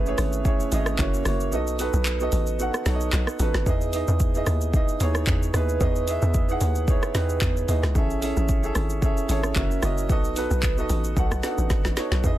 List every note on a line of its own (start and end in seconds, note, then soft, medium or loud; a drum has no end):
0.00 0.15 A1 loud
0.00 0.05 A3 loud
0.00 0.06 C#4 medium
0.00 0.07 E4 medium
0.00 0.08 G#4 medium
0.00 1.00 B4 loud
0.00 0.08 C#5 loud
0.05 0.37 A3 medium
0.05 0.38 C#4 medium
0.05 0.38 E4 medium
0.05 0.39 G#4 medium
0.05 0.39 C#5 loud
0.05 shaker soft
0.18 0.56 G#1 medium
0.18 cross-stick medium
0.18 open hi-hat medium
0.18 shaker medium
0.33 shaker medium
0.44 0.67 A3 medium
0.44 0.67 C#4 medium
0.44 0.67 E4 medium
0.44 0.68 G#4 medium
0.44 0.68 C#5 loud
0.44 kick loud
0.44 shaker medium
0.60 shaker medium
0.71 0.96 G#1 loud
0.71 0.98 A3 loud
0.71 0.97 C#4 medium
0.71 0.98 E4 medium
0.71 0.99 G#4 medium
0.71 1.00 D#5 loud
0.71 open hi-hat medium
0.71 shaker loud
0.86 cross-stick loud
0.86 shaker medium
0.98 1.23 F#1 loud
0.98 1.20 A#3 loud
0.98 1.21 C#4 medium
0.98 1.21 E4 medium
0.98 1.21 F#4 medium
0.98 1.22 C#5 loud
0.98 kick loud
0.98 clap medium
0.98 shaker medium
1.14 shaker medium
1.25 1.53 F#1 medium
1.25 1.47 A#3 medium
1.25 1.47 C#4 medium
1.25 1.48 E4 medium
1.25 1.48 F#4 medium
1.25 1.49 C#5 loud
1.25 cross-stick loud
1.25 open hi-hat medium
1.25 shaker medium
1.40 shaker medium
1.51 1.90 B1 loud
1.51 1.74 B3 loud
1.51 1.74 D#4 medium
1.51 1.74 F#4 medium
1.51 1.75 A4 medium
1.51 1.75 D#5 loud
1.51 shaker medium
1.67 shaker medium
1.78 2.11 B3 medium
1.78 2.12 D#4 medium
1.78 2.12 F#4 medium
1.78 2.12 A4 medium
1.78 2.13 B4 loud
1.78 open hi-hat medium
1.78 shaker loud
1.93 2.29 B1 loud
1.93 shaker medium
2.05 clap loud
2.05 shaker medium
2.20 2.52 B3 medium
2.20 2.52 D#4 medium
2.20 2.53 F#4 medium
2.20 2.53 A4 medium
2.20 2.53 D#5 loud
2.20 shaker soft
2.32 2.70 A1 medium
2.32 open hi-hat medium
2.32 shaker medium
2.47 shaker medium
2.59 2.81 B3 medium
2.59 2.81 D#4 medium
2.59 2.82 F#4 medium
2.59 2.82 A4 medium
2.59 2.82 F#5 loud
2.59 shaker medium
2.74 cross-stick loud
2.74 shaker medium
2.85 3.10 B1 loud
2.85 3.30 B3 medium
2.85 3.30 D#4 medium
2.85 3.30 F#4 medium
2.85 3.31 A4 medium
2.85 2.94 C#5 medium
2.85 snare medium
2.85 open hi-hat medium
2.85 shaker loud
2.95 3.34 D#5 loud
3.00 shaker medium
3.13 3.26 B1 loud
3.13 snare medium
3.13 clap medium
3.13 shaker medium
3.27 cross-stick loud
3.27 shaker medium
3.39 3.53 A1 loud
3.39 3.61 B3 medium
3.39 3.62 D#4 medium
3.39 3.62 F#4 medium
3.39 3.62 A4 medium
3.39 3.63 B4 loud
3.39 open hi-hat medium
3.39 shaker medium
3.54 3.65 G#1 medium
3.54 cross-stick loud
3.54 snare medium
3.54 shaker medium
3.66 4.04 E2 loud
3.66 3.88 B3 loud
3.66 3.89 D#4 medium
3.66 3.89 E4 medium
3.66 3.89 G#4 medium
3.66 3.90 D#5 loud
3.66 kick loud
3.66 shaker medium
3.81 shaker medium
3.93 4.26 B3 medium
3.93 4.26 D#4 medium
3.93 4.26 E4 medium
3.93 4.27 G#4 medium
3.93 4.27 D#5 loud
3.93 open hi-hat medium
3.93 shaker loud
4.08 4.43 E2 loud
4.08 shaker medium
4.20 kick loud
4.20 shaker medium
4.34 4.66 B3 medium
4.34 4.67 D#4 medium
4.34 4.67 E4 medium
4.34 4.67 G#4 medium
4.34 4.68 D#5 loud
4.34 shaker soft
4.46 4.84 D#2 medium
4.46 cross-stick medium
4.46 open hi-hat medium
4.46 shaker medium
4.61 shaker medium
4.73 4.95 B3 medium
4.73 4.96 D#4 medium
4.73 4.96 E4 medium
4.73 4.96 G#4 medium
4.73 4.97 D#5 loud
4.73 kick loud
4.73 shaker medium
4.88 shaker medium
5.00 5.25 D#2 medium
5.00 5.44 B3 medium
5.00 5.44 D#4 medium
5.00 5.45 E4 medium
5.00 5.45 G#4 medium
5.00 5.46 C#5 loud
5.00 open hi-hat medium
5.00 shaker loud
5.15 cross-stick loud
5.15 shaker medium
5.27 5.51 E2 loud
5.27 kick loud
5.27 clap medium
5.27 shaker medium
5.43 shaker medium
5.53 5.78 D#2 loud
5.53 5.76 B3 medium
5.53 5.76 D#4 medium
5.53 5.76 E4 medium
5.53 5.77 G#4 medium
5.53 5.77 B4 loud
5.53 cross-stick medium
5.53 open hi-hat medium
5.53 shaker loud
5.69 shaker medium
5.80 6.18 E2 loud
5.80 6.02 B3 medium
5.80 6.03 D#4 medium
5.80 6.03 E4 medium
5.80 6.04 G#4 medium
5.80 6.04 D#5 loud
5.80 kick loud
5.80 shaker medium
5.96 shaker medium
6.07 6.40 B3 medium
6.07 6.41 E4 medium
6.07 6.41 G#4 medium
6.07 6.40 D#5 medium
6.07 6.42 E5 loud
6.07 open hi-hat medium
6.07 shaker loud
6.22 6.57 E2 loud
6.22 shaker medium
6.34 kick loud
6.34 shaker medium
6.48 6.80 B3 medium
6.48 6.81 D#4 medium
6.48 6.81 E4 medium
6.48 6.81 G#4 medium
6.48 6.82 F#5 loud
6.48 shaker soft
6.61 6.99 D#2 medium
6.61 open hi-hat medium
6.61 shaker medium
6.75 shaker medium
6.87 7.09 B3 medium
6.87 7.10 D#4 medium
6.87 7.10 E4 medium
6.87 7.11 G#4 medium
6.87 7.11 C#5 loud
6.87 kick loud
6.87 shaker medium
7.03 cross-stick loud
7.03 shaker medium
7.14 7.39 E2 medium
7.14 7.58 B3 loud
7.14 7.59 D#4 medium
7.14 7.59 E4 medium
7.14 7.22 G4 medium
7.14 7.60 B4 loud
7.14 snare medium
7.14 open hi-hat medium
7.14 shaker loud
7.22 7.62 G#4 medium
7.29 shaker medium
7.41 7.66 E2 loud
7.41 kick loud
7.41 snare medium
7.41 clap medium
7.41 shaker medium
7.57 shaker medium
7.67 7.82 D#2 medium
7.67 7.90 B3 medium
7.67 7.90 D#4 medium
7.67 7.91 E4 medium
7.67 7.91 G#4 medium
7.67 7.91 D#5 loud
7.67 open hi-hat medium
7.67 shaker medium
7.83 7.94 C#2 loud
7.83 cross-stick loud
7.83 snare medium
7.83 shaker medium
7.95 8.33 A1 loud
7.95 8.17 C#4 loud
7.95 8.17 E4 medium
7.95 8.18 G#4 medium
7.95 8.18 A4 medium
7.95 8.18 E5 loud
7.95 kick loud
7.95 shaker medium
8.10 shaker medium
8.21 8.54 C#4 loud
8.21 8.55 E4 medium
8.21 8.55 G#4 medium
8.21 8.55 A4 medium
8.21 8.56 E5 loud
8.21 open hi-hat medium
8.21 shaker loud
8.37 8.72 A1 loud
8.37 shaker medium
8.49 kick loud
8.49 shaker medium
8.63 8.95 C#4 medium
8.63 8.95 E4 medium
8.63 8.95 G#4 medium
8.63 8.96 A4 medium
8.63 8.96 E5 loud
8.63 shaker medium
8.75 9.13 G#1 medium
8.75 cross-stick medium
8.75 open hi-hat medium
8.75 shaker medium
8.90 shaker medium
9.02 9.24 C#4 medium
9.02 9.24 E4 medium
9.02 9.25 G#4 medium
9.02 9.25 A4 medium
9.02 9.25 E5 loud
9.02 kick loud
9.02 shaker medium
9.17 shaker medium
9.28 9.53 G#1 loud
9.28 9.53 C#4 medium
9.28 9.54 E4 medium
9.28 9.56 G#4 medium
9.28 9.57 A4 medium
9.28 9.57 C#5 loud
9.28 open hi-hat medium
9.28 shaker loud
9.43 cross-stick loud
9.43 shaker medium
9.55 9.80 F#1 loud
9.55 9.77 C#4 loud
9.55 9.78 E4 medium
9.55 9.78 F#4 medium
9.55 9.78 A#4 medium
9.55 9.79 E5 loud
9.55 kick medium
9.55 clap medium
9.55 shaker medium
9.71 shaker medium
9.82 10.11 F#1 loud
9.82 10.04 C#4 medium
9.82 10.05 E4 medium
9.82 10.05 F#4 medium
9.82 10.05 A#4 medium
9.82 10.06 D#5 loud
9.82 cross-stick loud
9.82 open hi-hat medium
9.82 shaker medium
9.98 shaker medium
10.09 10.47 B1 loud
10.09 10.31 B3 medium
10.09 10.31 D#4 medium
10.09 10.32 F#4 medium
10.09 10.32 A4 medium
10.09 10.33 D#5 loud
10.09 kick loud
10.09 shaker medium
10.24 shaker medium
10.35 10.68 B3 loud
10.35 10.69 D#4 medium
10.35 10.69 F#4 medium
10.35 10.70 A4 medium
10.35 10.70 B4 loud
10.35 open hi-hat medium
10.35 shaker loud
10.51 10.86 B1 loud
10.51 shaker medium
10.63 kick loud
10.63 clap loud
10.63 shaker medium
10.77 11.09 B3 medium
10.77 11.09 D#4 medium
10.77 11.10 F#4 medium
10.77 11.10 A4 medium
10.77 11.10 D#5 loud
10.77 shaker soft
10.89 11.14 A1 loud
10.89 open hi-hat medium
10.89 shaker medium
11.04 shaker medium
11.16 11.30 B1 loud
11.16 11.38 B3 medium
11.16 11.38 D#4 medium
11.16 11.39 F#4 medium
11.16 11.39 A4 medium
11.16 11.39 F#5 loud
11.16 kick loud
11.16 shaker medium
11.31 11.42 B1 medium
11.31 cross-stick loud
11.31 shaker medium
11.43 11.87 B3 medium
11.43 11.50 D4 medium
11.43 11.88 F#4 medium
11.43 11.88 A4 medium
11.43 11.88 F#5 loud
11.43 snare medium
11.43 open hi-hat medium
11.43 shaker loud
11.50 11.90 D#4 medium
11.58 11.69 A1 medium
11.58 shaker medium
11.70 11.83 G#1 medium
11.70 kick loud
11.70 snare medium
11.70 shaker medium
11.85 11.96 A1 medium
11.85 snare medium
11.85 shaker medium
11.96 12.19 B3 medium
11.96 12.19 D#4 medium
11.96 12.19 F#4 medium
11.96 12.20 A4 medium
11.96 12.20 C#5 medium
11.96 snare loud
11.96 open hi-hat medium
11.96 shaker medium
12.11 12.22 B1 loud
12.11 snare loud
12.11 shaker medium
12.23 12.38 E2 loud
12.23 12.38 B3 medium
12.23 12.38 D#4 medium
12.23 12.38 E4 medium
12.23 12.38 G#4 medium
12.23 12.38 D#5 loud
12.23 kick loud
12.23 shaker medium